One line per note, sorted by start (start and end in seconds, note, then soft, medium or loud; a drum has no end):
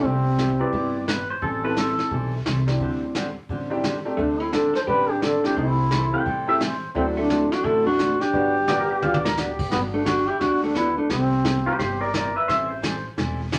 0.04 0.59 C2 medium
0.04 0.25 C3 medium
0.04 0.26 G3 medium
0.04 0.73 G3 medium
0.04 0.26 B3 medium
0.04 0.73 C4 medium
0.04 0.26 E4 soft
0.04 0.26 G4 medium
0.04 brush sweep soft
0.04 kick soft
0.38 0.50 C3 medium
0.38 0.50 G3 medium
0.38 0.50 B3 medium
0.38 0.50 E4 medium
0.38 0.50 G4 medium
0.38 snare medium
0.38 hi-hat pedal medium
0.59 1.04 C4 medium
0.59 1.04 E4 medium
0.59 1.05 G4 medium
0.59 1.05 B4 medium
0.59 1.06 D5 medium
0.72 1.28 G1 medium
0.72 0.94 C3 medium
0.72 0.95 G3 medium
0.72 0.94 B3 medium
0.72 0.95 E4 medium
0.72 0.95 G4 medium
0.72 brush sweep soft
0.72 kick soft
1.08 1.19 C3 medium
1.08 1.19 G3 medium
1.08 1.19 B3 medium
1.08 1.19 E4 medium
1.08 1.20 G4 medium
1.08 1.29 B4 medium
1.08 snare medium
1.08 hi-hat pedal medium
1.30 1.42 C5 medium
1.42 1.97 A1 medium
1.42 1.63 E3 medium
1.42 1.64 G3 soft
1.42 1.64 C4 medium
1.42 1.64 E4 medium
1.42 1.63 A4 medium
1.42 1.64 A4 medium
1.42 brush sweep medium
1.42 kick soft
1.63 2.08 C4 medium
1.63 2.08 E4 medium
1.63 2.09 G4 medium
1.63 2.09 A4 medium
1.63 1.76 B4 medium
1.76 1.88 E3 medium
1.76 1.88 G3 medium
1.76 1.88 C4 medium
1.76 1.88 E4 medium
1.76 1.88 A4 medium
1.76 2.10 A4 medium
1.76 snare medium
1.76 hi-hat pedal medium
1.99 snare soft
2.11 2.40 B1 medium
2.11 2.33 E3 medium
2.11 2.33 G3 medium
2.11 2.33 C4 medium
2.11 2.33 E4 medium
2.11 2.33 A4 medium
2.11 brush sweep soft
2.11 kick soft
2.45 2.75 C2 medium
2.45 2.57 E3 medium
2.45 2.57 G3 medium
2.45 2.57 C4 medium
2.45 2.57 E4 medium
2.45 2.58 A4 medium
2.45 snare medium
2.45 hi-hat pedal medium
2.67 3.12 C4 medium
2.67 3.12 D4 medium
2.67 3.12 E4 medium
2.67 3.12 G4 medium
2.67 snare soft
2.80 3.35 D2 medium
2.80 3.02 D3 medium
2.80 3.02 G3 medium
2.80 3.02 C4 medium
2.80 3.02 D4 medium
2.80 3.02 G4 medium
2.80 brush sweep soft
2.80 kick soft
3.15 3.26 D3 medium
3.15 3.26 G3 medium
3.15 3.27 C4 medium
3.15 3.27 D4 medium
3.15 3.27 G4 medium
3.15 snare medium
3.15 hi-hat pedal medium
3.49 4.04 A1 medium
3.49 3.71 D3 medium
3.49 3.71 G3 medium
3.49 3.71 C4 medium
3.49 3.71 D4 medium
3.49 3.72 G4 medium
3.49 brush sweep medium
3.49 kick soft
3.70 3.82 C4 medium
3.70 3.82 D4 medium
3.70 3.82 E4 medium
3.70 3.82 G4 medium
3.84 3.95 D3 medium
3.84 3.95 G3 medium
3.84 3.96 C4 medium
3.84 3.96 D4 medium
3.84 3.96 G4 medium
3.84 snare medium
3.84 hi-hat pedal medium
4.05 4.17 A3 medium
4.05 4.17 C4 medium
4.05 4.17 D4 medium
4.05 4.17 G4 medium
4.17 4.74 D2 medium
4.17 4.40 D3 soft
4.17 4.40 G3 medium
4.17 4.40 A3 medium
4.17 4.40 C4 medium
4.17 4.42 D4 loud
4.17 4.40 D4 medium
4.17 4.40 G4 medium
4.17 brush sweep soft
4.17 kick soft
4.40 4.53 C4 medium
4.40 4.53 E4 medium
4.53 4.64 D3 medium
4.53 4.64 G3 medium
4.53 4.65 C4 medium
4.53 4.73 D4 medium
4.53 4.65 D4 medium
4.53 4.65 G4 medium
4.53 4.74 A4 loud
4.53 snare medium
4.53 hi-hat pedal soft
4.74 4.79 A4 medium
4.74 4.81 C5 loud
4.74 snare soft
4.87 5.43 A1 medium
4.87 5.09 D3 medium
4.87 5.09 G3 medium
4.87 5.09 C4 medium
4.87 5.09 D4 medium
4.87 5.08 G4 medium
4.87 5.10 G4 medium
4.87 5.12 B4 loud
4.87 brush sweep soft
4.87 kick soft
5.09 5.21 D4 medium
5.09 5.22 G4 loud
5.22 5.33 D3 medium
5.22 5.34 G3 medium
5.22 5.34 C4 medium
5.22 5.43 D4 medium
5.22 5.34 D4 medium
5.22 5.34 G4 medium
5.22 5.43 A4 medium
5.22 snare medium
5.22 hi-hat pedal soft
5.43 5.88 A3 medium
5.43 5.88 C4 medium
5.43 5.56 D4 medium
5.43 5.89 E4 medium
5.43 5.89 G4 medium
5.43 5.57 G4 medium
5.43 snare soft
5.56 6.12 C2 medium
5.56 5.78 C3 soft
5.56 5.78 E3 medium
5.56 5.79 G3 medium
5.56 6.22 C4 medium
5.56 5.79 C4 medium
5.56 5.79 E4 medium
5.56 6.22 E4 medium
5.56 5.79 A4 medium
5.56 brush sweep soft
5.56 kick soft
5.91 6.02 C3 medium
5.91 6.02 E3 medium
5.91 6.03 G3 medium
5.91 6.03 C4 medium
5.91 6.03 E4 medium
5.91 6.03 A4 medium
5.91 snare medium
5.91 hi-hat pedal medium
6.12 6.24 A3 medium
6.12 6.24 C4 medium
6.12 6.25 E4 medium
6.12 6.25 G4 medium
6.12 6.47 G5 loud
6.26 6.81 A2 medium
6.26 6.47 C3 medium
6.26 6.48 E3 medium
6.26 6.48 G3 medium
6.26 6.48 C4 medium
6.26 6.48 E4 medium
6.26 6.48 A4 medium
6.26 brush sweep medium
6.26 kick soft
6.47 6.59 A3 medium
6.47 6.59 C4 medium
6.47 6.59 E4 medium
6.47 6.59 G4 medium
6.47 6.60 E5 medium
6.60 6.72 C3 medium
6.60 6.72 E3 medium
6.60 6.72 G3 medium
6.60 6.72 C4 medium
6.60 6.72 E4 medium
6.60 6.72 A4 medium
6.60 6.88 C5 medium
6.60 snare medium
6.60 hi-hat pedal medium
6.94 7.50 D2 medium
6.94 7.16 D3 medium
6.94 7.91 F#3 medium
6.94 7.17 A3 medium
6.94 7.02 A3 medium
6.94 7.91 C4 medium
6.94 7.17 C4 medium
6.94 7.06 C4 loud
6.94 7.91 D4 medium
6.94 7.91 E4 medium
6.94 7.17 F#4 medium
6.94 7.17 A4 medium
6.94 brush sweep medium
6.94 kick soft
7.17 7.52 A3 medium
7.17 7.54 D4 medium
7.29 7.41 D3 medium
7.29 7.41 A3 medium
7.29 7.41 C4 medium
7.29 7.41 F#4 medium
7.29 7.41 A4 medium
7.29 snare medium
7.29 hi-hat pedal medium
7.52 7.64 D4 medium
7.52 7.66 F#4 loud
7.52 snare soft
7.64 8.20 A1 medium
7.64 7.86 D3 medium
7.64 7.86 A3 medium
7.64 7.86 C4 medium
7.64 7.86 E4 medium
7.64 7.86 F#4 medium
7.64 7.86 A4 loud
7.64 7.86 A4 medium
7.64 brush sweep medium
7.64 kick soft
7.86 8.19 D4 medium
7.86 8.22 F#4 medium
7.99 8.10 D3 medium
7.99 8.10 A3 medium
7.99 8.10 C4 medium
7.99 8.10 F#4 medium
7.99 8.11 A4 medium
7.99 snare medium
7.99 hi-hat pedal medium
8.20 9.37 D4 medium
8.20 9.37 G4 loud
8.20 snare soft
8.33 8.89 G1 medium
8.33 8.55 D3 medium
8.33 8.55 F#3 medium
8.33 8.53 G3 medium
8.33 8.53 B3 medium
8.33 8.55 B3 medium
8.33 8.53 D4 medium
8.33 8.55 D4 medium
8.33 8.54 F#4 medium
8.33 8.56 G4 medium
8.33 brush sweep medium
8.33 kick soft
8.68 8.79 D3 medium
8.68 8.79 F#3 medium
8.68 9.20 G3 medium
8.68 9.20 B3 medium
8.68 8.80 B3 medium
8.68 9.20 D4 medium
8.68 8.80 D4 medium
8.68 8.80 G4 medium
8.68 8.79 D5 medium
8.68 9.21 F#5 medium
8.68 snare medium
8.68 hi-hat pedal soft
8.79 8.90 A#4 medium
8.91 9.02 G4 medium
9.02 9.58 D2 medium
9.02 9.24 D3 medium
9.02 9.24 F#3 medium
9.02 9.24 B3 medium
9.02 9.24 D4 medium
9.02 9.14 F4 medium
9.02 9.25 G4 medium
9.02 high tom soft
9.14 9.25 D5 medium
9.14 high tom medium
9.25 9.36 A#4 loud
9.25 snare medium
9.37 9.48 D3 medium
9.37 9.49 F#3 medium
9.37 9.49 B3 medium
9.37 9.49 D4 medium
9.37 9.65 G4 medium
9.37 9.49 G4 medium
9.37 snare medium
9.37 hi-hat pedal medium
9.59 kick medium
9.59 crash medium
9.71 10.27 G1 medium
9.71 9.94 D3 medium
9.71 9.94 F#3 medium
9.71 9.78 G3 medium
9.71 9.81 B3 loud
9.71 9.94 B3 medium
9.71 9.94 D4 medium
9.71 9.94 G4 medium
9.71 brush sweep medium
9.71 kick soft
9.71 snare soft
9.93 10.05 A3 medium
9.93 10.05 D4 medium
10.05 10.18 D3 medium
10.05 10.18 F#3 medium
10.05 10.18 B3 medium
10.05 10.27 D4 medium
10.05 10.18 D4 medium
10.05 10.28 F#4 loud
10.05 10.18 G4 medium
10.05 kick soft
10.05 snare medium
10.05 hi-hat pedal medium
10.27 10.40 E4 medium
10.27 10.39 G4 loud
10.40 10.96 D2 medium
10.40 10.62 D3 medium
10.40 10.63 F#3 medium
10.40 10.63 B3 medium
10.40 10.61 D4 medium
10.40 10.63 D4 medium
10.40 10.61 F#4 loud
10.40 10.63 G4 medium
10.40 brush sweep medium
10.40 kick soft
10.40 snare soft
10.63 10.74 A3 medium
10.63 10.75 D4 medium
10.75 10.87 D3 medium
10.75 10.87 F#3 medium
10.75 10.95 B3 medium
10.75 10.87 B3 medium
10.75 10.87 D4 medium
10.75 10.96 E4 loud
10.75 10.87 G4 medium
10.75 kick soft
10.75 snare medium
10.75 hi-hat pedal soft
10.97 11.09 A3 medium
10.97 11.09 D4 medium
11.10 11.65 C2 medium
11.10 11.32 C3 medium
11.10 11.32 G3 medium
11.10 11.76 G3 medium
11.10 11.32 B3 medium
11.10 11.75 C4 medium
11.10 11.32 E4 medium
11.10 11.32 G4 medium
11.10 brush sweep medium
11.10 kick soft
11.10 snare soft
11.45 11.56 C3 medium
11.45 11.56 G3 medium
11.45 11.56 B3 medium
11.45 11.56 E4 medium
11.45 11.57 G4 medium
11.45 kick soft
11.45 snare medium
11.45 hi-hat pedal medium
11.66 11.78 G4 medium
11.66 11.78 C5 medium
11.79 12.35 G1 medium
11.79 12.01 C3 medium
11.79 12.01 G3 medium
11.79 12.01 B3 medium
11.79 12.01 E4 medium
11.79 11.99 G4 medium
11.79 12.01 G4 medium
11.79 12.01 C5 medium
11.79 brush sweep soft
11.79 kick soft
11.79 snare soft
12.01 12.13 A#4 medium
12.01 12.13 D5 medium
12.14 12.25 C3 medium
12.14 12.25 G3 medium
12.14 12.26 B3 medium
12.14 12.26 E4 medium
12.14 12.26 G4 medium
12.14 12.34 A#4 medium
12.14 12.36 D5 medium
12.14 kick soft
12.14 snare medium
12.14 hi-hat pedal medium
12.36 12.49 B4 medium
12.36 12.47 E5 medium
12.48 13.04 A1 medium
12.48 12.70 E3 medium
12.48 12.70 G3 medium
12.48 12.70 C4 medium
12.48 12.71 E4 medium
12.48 12.71 A4 medium
12.48 12.69 C5 medium
12.48 12.70 E5 loud
12.48 brush sweep medium
12.48 kick soft
12.48 snare soft
12.71 13.04 C5 medium
12.82 12.94 E3 medium
12.82 12.94 G3 medium
12.82 12.94 C4 medium
12.82 12.94 E4 medium
12.82 12.95 A4 medium
12.82 kick soft
12.82 snare medium
12.82 hi-hat pedal medium
13.17 13.59 E1 medium
13.17 13.39 E3 medium
13.17 13.39 G3 medium
13.17 13.39 C4 medium
13.17 13.39 E4 medium
13.17 13.39 A4 medium
13.17 brush sweep medium
13.17 kick soft
13.17 snare soft
13.52 13.59 E3 medium
13.52 13.59 G3 medium
13.52 13.59 C4 medium
13.52 13.59 E4 medium
13.52 13.59 A4 medium
13.52 kick soft
13.52 snare medium
13.52 hi-hat pedal medium